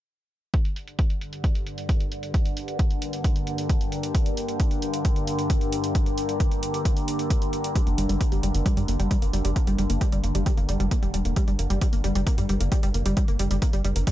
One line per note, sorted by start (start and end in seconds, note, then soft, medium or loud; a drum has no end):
0.54 14.12 G2 medium
0.54 14.12 D3 medium
0.54 14.12 D4 medium
0.54 kick loud
0.54 closed hi-hat medium
0.65 14.12 A#4 medium
0.65 closed hi-hat medium
0.76 closed hi-hat medium
0.88 closed hi-hat medium
0.99 kick loud
0.99 closed hi-hat medium
1.10 closed hi-hat medium
1.21 closed hi-hat medium
1.30 14.12 G5 medium
1.30 14.12 A#5 medium
1.30 closed hi-hat medium
1.44 kick loud
1.44 closed hi-hat medium
1.55 closed hi-hat medium
1.67 closed hi-hat medium
1.78 closed hi-hat medium
1.89 kick loud
1.89 closed hi-hat loud
2.00 closed hi-hat medium
2.12 closed hi-hat medium
2.23 closed hi-hat medium
2.34 kick loud
2.34 closed hi-hat loud
2.45 closed hi-hat medium
2.57 closed hi-hat medium
2.68 closed hi-hat medium
2.79 kick loud
2.79 closed hi-hat medium
2.91 closed hi-hat medium
3.02 closed hi-hat medium
3.13 closed hi-hat medium
3.24 kick loud
3.24 closed hi-hat medium
3.36 closed hi-hat medium
3.47 closed hi-hat medium
3.58 closed hi-hat medium
3.69 kick loud
3.69 closed hi-hat medium
3.81 closed hi-hat medium
3.92 closed hi-hat medium
4.03 closed hi-hat medium
4.15 kick loud
4.15 closed hi-hat medium
4.26 closed hi-hat medium
4.37 closed hi-hat medium
4.49 closed hi-hat medium
4.60 kick loud
4.60 closed hi-hat medium
4.71 closed hi-hat medium
4.82 closed hi-hat medium
4.94 closed hi-hat medium
5.05 kick loud
5.05 closed hi-hat medium
5.16 closed hi-hat medium
5.27 closed hi-hat medium
5.39 closed hi-hat medium
5.50 kick loud
5.50 closed hi-hat loud
5.61 closed hi-hat medium
5.72 closed hi-hat medium
5.84 closed hi-hat medium
5.95 kick loud
5.95 closed hi-hat medium
6.06 closed hi-hat soft
6.18 closed hi-hat medium
6.29 closed hi-hat soft
6.40 kick loud
6.40 closed hi-hat medium
6.52 closed hi-hat medium
6.63 closed hi-hat medium
6.74 closed hi-hat medium
6.85 kick loud
6.85 closed hi-hat medium
6.97 closed hi-hat soft
7.08 closed hi-hat medium
7.19 closed hi-hat soft
7.30 kick loud
7.30 closed hi-hat medium
7.42 closed hi-hat medium
7.53 closed hi-hat medium
7.64 closed hi-hat medium
7.76 7.81 G3 loud
7.76 kick loud
7.76 closed hi-hat medium
7.87 7.95 G1 medium
7.87 7.95 A#3 medium
7.87 closed hi-hat medium
7.98 8.07 G1 loud
7.98 8.06 G3 medium
7.98 closed hi-hat medium
8.09 8.18 G1 medium
8.09 8.15 G3 loud
8.09 closed hi-hat soft
8.21 8.29 A#3 medium
8.21 kick loud
8.21 closed hi-hat medium
8.32 8.40 G1 medium
8.32 8.40 G3 loud
8.32 closed hi-hat soft
8.43 8.52 G1 loud
8.43 8.49 G3 loud
8.43 closed hi-hat medium
8.54 8.63 G1 medium
8.54 8.63 A#3 medium
8.54 closed hi-hat medium
8.66 8.74 G3 loud
8.66 kick loud
8.66 closed hi-hat medium
8.77 8.86 G2 medium
8.77 8.83 G3 loud
8.77 closed hi-hat soft
8.88 8.97 G1 medium
8.88 8.97 A#3 medium
8.88 closed hi-hat medium
9.00 9.08 G1 medium
9.00 9.08 G3 loud
9.00 closed hi-hat soft
9.11 9.16 G3 loud
9.11 kick loud
9.11 closed hi-hat medium
9.22 9.31 G1 medium
9.22 9.31 A#3 medium
9.22 closed hi-hat soft
9.33 9.42 G1 loud
9.33 9.42 G3 loud
9.33 closed hi-hat medium
9.45 9.53 G1 medium
9.45 9.50 G3 loud
9.45 closed hi-hat soft
9.56 9.64 A#3 medium
9.56 kick loud
9.56 closed hi-hat medium
9.67 9.76 G1 medium
9.67 9.76 G3 loud
9.67 closed hi-hat soft
9.78 9.87 G1 loud
9.78 9.84 G3 loud
9.78 closed hi-hat medium
9.90 9.98 G1 medium
9.90 9.98 A#3 medium
9.90 closed hi-hat soft
10.01 10.10 G3 loud
10.01 kick loud
10.01 closed hi-hat medium
10.12 10.21 G1 medium
10.12 10.18 G3 loud
10.12 closed hi-hat soft
10.24 10.32 G1 loud
10.24 10.32 A#3 medium
10.24 closed hi-hat medium
10.35 10.43 G1 medium
10.35 10.43 G3 loud
10.35 closed hi-hat soft
10.46 10.52 G3 loud
10.46 kick loud
10.46 closed hi-hat medium
10.57 10.66 G1 medium
10.57 10.66 A#3 medium
10.57 closed hi-hat soft
10.69 10.77 G1 loud
10.69 10.77 G3 loud
10.69 closed hi-hat medium
10.80 10.89 G1 loud
10.80 10.86 G3 loud
10.80 closed hi-hat soft
10.91 11.00 A#3 medium
10.91 kick loud
10.91 closed hi-hat medium
11.03 11.11 F1 medium
11.03 11.11 G3 loud
11.03 closed hi-hat soft
11.14 11.22 F1 loud
11.14 11.20 G3 loud
11.14 closed hi-hat medium
11.25 11.34 F1 medium
11.25 11.34 A#3 medium
11.25 closed hi-hat medium
11.36 11.45 G3 loud
11.36 kick loud
11.36 closed hi-hat medium
11.48 11.56 G1 medium
11.48 11.53 G3 loud
11.48 closed hi-hat medium
11.59 11.68 G1 loud
11.59 11.67 A#3 medium
11.59 closed hi-hat medium
11.70 11.79 G1 medium
11.70 11.79 G3 loud
11.70 closed hi-hat medium
11.81 11.87 G3 loud
11.81 kick loud
11.81 closed hi-hat medium
11.93 12.01 G1 medium
11.93 12.01 A#3 medium
11.93 closed hi-hat soft
12.04 12.13 G1 loud
12.04 12.13 G3 loud
12.04 closed hi-hat medium
12.15 12.24 G1 medium
12.15 12.21 G3 loud
12.15 closed hi-hat medium
12.27 12.35 A#3 medium
12.27 kick loud
12.27 closed hi-hat medium
12.38 12.47 G2 medium
12.38 12.46 G3 loud
12.38 closed hi-hat soft
12.49 12.58 G1 medium
12.49 12.55 G3 loud
12.49 closed hi-hat medium
12.61 12.69 G1 medium
12.61 12.69 A#3 medium
12.61 closed hi-hat medium
12.72 12.80 G3 loud
12.72 kick loud
12.72 closed hi-hat medium
12.83 12.92 G1 medium
12.83 12.89 G3 loud
12.83 closed hi-hat medium
12.94 13.03 G1 loud
12.94 13.03 A#3 medium
12.94 closed hi-hat medium
13.06 13.14 G1 medium
13.06 13.14 G3 loud
13.06 closed hi-hat medium
13.17 13.23 G3 loud
13.17 kick loud
13.17 closed hi-hat medium
13.28 13.37 G1 medium
13.28 13.37 A#3 medium
13.28 closed hi-hat medium
13.39 13.48 G1 loud
13.39 13.48 G3 loud
13.39 closed hi-hat medium
13.51 13.59 G1 medium
13.51 13.56 G3 loud
13.51 closed hi-hat medium
13.62 13.70 A#3 medium
13.62 kick loud
13.62 closed hi-hat medium
13.73 13.82 G1 medium
13.73 13.82 G3 loud
13.73 closed hi-hat medium
13.85 13.93 G1 loud
13.85 13.90 G3 loud
13.85 closed hi-hat medium
13.96 14.04 G1 medium
13.96 14.04 A#3 medium
13.96 closed hi-hat medium
14.07 14.12 G3 loud
14.07 kick loud
14.07 closed hi-hat medium